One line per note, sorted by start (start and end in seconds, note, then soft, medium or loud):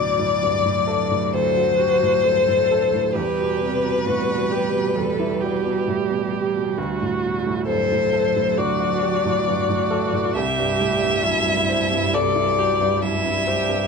0.00 1.29 D2 medium
0.00 0.19 A2 soft
0.00 0.19 B2 soft
0.00 3.16 F#3 medium
0.00 1.35 D5 loud
0.19 0.56 A2 soft
0.43 0.65 G2 soft
0.65 1.02 A2 soft
0.87 1.24 A4 medium
1.11 1.48 A2 soft
1.33 3.12 D2 medium
1.33 1.76 A4 medium
1.33 3.16 C5 medium
1.57 1.93 F#4 medium
1.78 2.26 F#4 medium
1.78 2.02 G4 soft
2.03 2.39 A2 soft
2.24 2.48 G2 soft
2.24 3.14 A4 medium
2.48 2.84 A2 soft
2.71 3.07 A4 soft
2.93 3.15 A2 soft
3.14 4.93 E2 medium
3.14 7.68 G3 medium
3.14 4.04 G4 medium
3.14 5.86 B4 medium
3.39 3.75 B2 soft
3.62 3.84 C3 soft
3.84 4.20 B2 soft
4.06 4.29 A2 soft
4.06 4.53 F#4 medium
4.30 4.65 B2 soft
4.51 4.97 G4 medium
4.51 4.88 G4 medium
4.75 5.11 B2 soft
4.96 6.73 E2 soft
4.96 5.42 A4 medium
5.19 5.55 E4 soft
5.41 5.64 F#4 soft
5.41 6.79 G4 medium
5.65 6.01 B2 soft
5.88 6.10 A2 soft
6.11 6.46 B2 soft
6.32 6.68 G4 soft
6.55 6.78 B2 soft
6.77 8.54 D2 medium
6.77 7.66 F#4 medium
7.02 7.37 A2 soft
7.24 7.46 B2 soft
7.46 7.82 A2 soft
7.66 7.91 G2 soft
7.66 10.35 F#3 medium
7.66 8.59 A4 medium
7.66 8.59 C5 medium
7.92 8.27 A2 soft
8.13 8.49 A4 soft
8.36 8.72 A2 soft
8.57 10.32 D2 soft
8.57 9.46 F#4 medium
8.57 10.35 D5 medium
8.80 9.16 F#4 soft
9.02 9.25 G4 soft
9.25 9.60 A2 soft
9.47 9.69 G2 soft
9.47 10.37 F#4 medium
9.69 10.05 A2 soft
9.91 10.26 A4 medium
10.13 10.36 A2 soft
10.35 12.09 C2 medium
10.35 13.87 G3 medium
10.35 11.26 G4 medium
10.35 12.15 E5 loud
10.59 10.94 G2 soft
10.81 11.03 A2 soft
11.03 11.38 G2 soft
11.24 11.47 F#2 soft
11.24 12.16 E4 medium
11.48 11.83 G2 soft
11.69 12.04 C5 medium
11.92 12.27 G2 medium
12.13 13.87 C2 medium
12.13 12.60 A4 medium
12.13 13.04 D5 medium
12.36 12.71 E4 medium
12.58 12.80 F#4 soft
12.58 13.03 G4 medium
12.80 13.16 G2 medium
13.03 13.25 F#2 soft
13.03 13.49 E4 medium
13.03 13.87 E5 medium
13.25 13.61 G2 soft
13.47 13.87 G4 medium
13.47 13.83 C5 medium
13.69 13.87 G2 soft